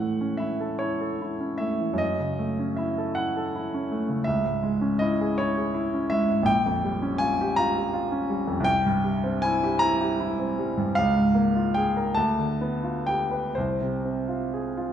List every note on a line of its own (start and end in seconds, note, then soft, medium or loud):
0.00 1.98 A2 medium
0.00 0.15 E3 soft
0.00 0.34 A3 soft
0.00 0.42 F#5 medium
0.21 0.54 C#4 soft
0.37 0.73 E4 soft
0.37 0.80 E5 medium
0.60 0.94 A4 soft
0.79 1.14 E4 soft
0.79 1.60 C#5 medium
1.01 1.34 A4 soft
1.22 1.54 E4 medium
1.40 1.73 C#4 soft
1.58 1.92 A3 soft
1.58 1.99 E5 medium
1.81 2.01 E3 soft
1.94 4.18 F#2 medium
1.98 2.76 D#5 medium
2.20 2.51 C#3 soft
2.39 2.70 A3 soft
2.59 2.90 C#4 soft
2.77 3.08 E4 medium
2.77 3.15 E5 medium
2.98 3.28 A4 medium
3.15 3.46 E4 medium
3.15 4.25 F#5 medium
3.37 3.65 A4 medium
3.55 3.84 E4 medium
3.74 4.02 C#4 medium
3.92 4.20 A3 medium
4.09 4.26 C#3 soft
4.24 6.43 C#2 medium
4.24 4.98 E5 medium
4.44 4.73 G#2 medium
4.63 4.92 G#3 medium
4.81 5.11 C#4 medium
4.99 5.30 E4 medium
4.99 5.36 D#5 medium
5.21 5.49 G#4 medium
5.38 5.67 E4 medium
5.38 6.10 C#5 medium
5.57 5.85 G#4 medium
5.74 6.03 E4 medium
5.94 6.22 C#4 medium
6.10 6.40 G#3 medium
6.10 6.47 E5 loud
6.29 6.47 G#2 medium
6.43 8.59 A#1 medium
6.43 7.20 G5 loud
6.66 6.95 F2 medium
6.84 7.13 G3 medium
7.02 7.31 C#4 medium
7.18 7.49 F4 medium
7.18 7.55 G#5 loud
7.41 7.68 G4 medium
7.56 7.86 F4 medium
7.56 8.65 A#5 loud
7.75 8.03 G4 medium
7.94 8.21 F4 medium
8.12 8.40 C#4 medium
8.30 8.58 G3 medium
8.47 8.65 F2 medium
8.60 10.89 C2 medium
8.64 9.40 G5 loud
8.86 9.15 G2 medium
9.05 9.34 G3 medium
9.24 9.53 C4 medium
9.42 9.73 E4 medium
9.42 9.80 G#5 loud
9.64 9.93 G4 medium
9.79 10.12 E4 medium
9.79 10.95 A#5 loud
10.01 10.31 G4 medium
10.20 10.50 E4 medium
10.39 10.69 C4 medium
10.59 10.89 G3 medium
10.77 10.96 G2 medium
10.95 12.14 C#2 medium
10.95 11.75 F5 loud
11.16 11.47 G#2 medium
11.35 11.67 A#3 medium
11.55 11.88 F4 medium
11.74 12.09 G#4 medium
11.74 12.16 G5 loud
11.97 12.17 A#4 medium
12.14 13.51 D2 medium
12.14 13.05 A5 loud
12.38 12.74 D3 soft
12.61 12.97 B3 medium
12.83 13.21 F4 soft
13.07 13.47 G4 medium
13.07 13.56 G5 medium
13.31 13.56 B4 medium
13.55 14.93 C2 medium
13.55 14.93 C5 medium
13.81 14.20 C3 soft
14.05 14.44 C4 soft
14.28 14.67 F4 medium
14.54 14.91 G#4 medium
14.77 14.93 F4 medium